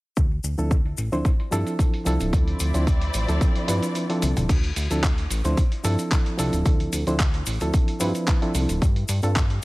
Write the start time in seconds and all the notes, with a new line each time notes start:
0.17 D2, kick, closed hi-hat, maracas
0.31 closed hi-hat
0.44 D2, closed hi-hat, maracas
0.58 D2 F3 C4 D4 E4 A4, closed hi-hat, maracas
0.71 kick, closed hi-hat, maracas
0.86 closed hi-hat
0.97 A1, closed hi-hat, maracas
1.12 D2 F3 C4 D4 E4 C5, closed hi-hat, maracas
1.25 kick, closed hi-hat, maracas
1.40 closed hi-hat
1.51 G2 F3 C4 D4 E4 A4, closed hi-hat, maracas
1.67 closed hi-hat, maracas
1.79 kick, closed hi-hat, maracas
1.94 closed hi-hat
2.05 C2 F3 C4 D4 E4 A4, closed hi-hat, maracas
2.20 D1, closed hi-hat, maracas
2.33 D2 F3 C4 E4 D5, kick, closed hi-hat, maracas
2.48 closed hi-hat
2.60 D2, closed hi-hat, maracas
2.74 D2 F3 C4 D4 E4 C5, closed hi-hat, maracas
2.87 kick, closed hi-hat, maracas
3.02 closed hi-hat
3.14 A1, closed hi-hat, maracas
3.28 D2 F3 C4 D4 E4 A4, closed hi-hat, maracas
3.41 kick, closed hi-hat, maracas
3.56 closed hi-hat
3.68 G2 F3 C4 D4 E4 B4, closed hi-hat, maracas
3.83 closed hi-hat, maracas
3.95 closed hi-hat, maracas
4.09 F3 C4 D4 E4 A4, closed hi-hat
4.22 C2, closed hi-hat, high tom, maracas
4.37 D1, closed hi-hat, mid tom, maracas
4.49 D2, kick, closed hi-hat, crash, maracas
4.64 closed hi-hat
4.76 D2, open hi-hat, maracas
4.90 D2 F3 C4 D4 E4 A4, closed hi-hat, maracas
5.03 kick, clap, closed hi-hat, maracas
5.18 closed hi-hat
5.30 A1, open hi-hat, maracas
5.44 D2 F3 C4 D4 E4 C5, closed hi-hat, maracas
5.57 kick, closed hi-hat, maracas
5.72 closed hi-hat
5.84 G2 F3 C4 D4 E4 A4, open hi-hat, maracas
5.99 closed hi-hat, maracas
6.11 kick, clap, closed hi-hat, maracas
6.26 closed hi-hat
6.38 C2 F3 C4 D4 E4 A4, open hi-hat, maracas
6.53 D1, closed hi-hat, maracas
6.65 D2, kick, closed hi-hat, maracas
6.80 closed hi-hat
6.93 D2, open hi-hat, maracas
7.07 D2 F3 C4 D4 E4 C5, closed hi-hat, maracas
7.19 kick, clap, closed hi-hat, maracas
7.34 closed hi-hat
7.46 A1, open hi-hat, maracas
7.61 D2 F3 C4 D4 E4 A4, closed hi-hat, maracas
7.73 kick, closed hi-hat, maracas
7.88 closed hi-hat
8.00 G2 F3 C4 D4 E4 B4, open hi-hat, maracas
8.15 closed hi-hat, maracas
8.27 kick, clap, closed hi-hat, maracas
8.42 F3 C4 D4 E4 A4, closed hi-hat
8.55 C2, open hi-hat, maracas
8.69 D1, closed hi-hat, maracas
8.82 G2, kick, closed hi-hat, maracas
8.96 closed hi-hat
9.08 G2, open hi-hat, maracas
9.22 G2 G3 C4 D4 F4 A4, closed hi-hat, maracas
9.36 kick, clap, closed hi-hat, maracas
9.50 closed hi-hat